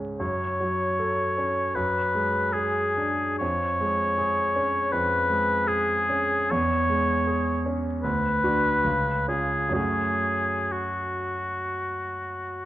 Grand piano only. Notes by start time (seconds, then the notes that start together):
Already playing: G#2 G#3 C#4 G#4
0.20 F#2
0.60 F#3
0.99 A4
1.38 C#4
1.76 F#2
2.15 G#3
2.55 G#4
2.97 D4
3.41 F2
3.81 G#3
4.18 G#4
4.56 C#4
4.93 F2
5.30 G#3
5.67 G#4
6.09 C#4
6.51 E2
6.90 G#3
7.27 G#4
7.66 C#4
8.04 D2
8.44 D4 F#4
8.84 C#2
9.28 C#4 F4
9.69 F#2 A3 C#4 F#4